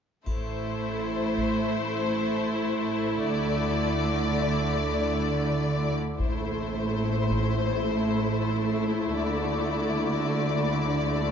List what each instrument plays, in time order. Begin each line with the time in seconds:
0.26 double bass section A1, cello section A2, viola section A3, violin section E4 C5, taiko, triangle
1.38 taiko
3.23 double bass section D2, cello section D3, violin section D5
6.19 double bass section A1, cello section A2, viola section A3, violin section E4 C5, taiko
7.30 taiko
9.15 double bass section D2, cello section D3, violin section D5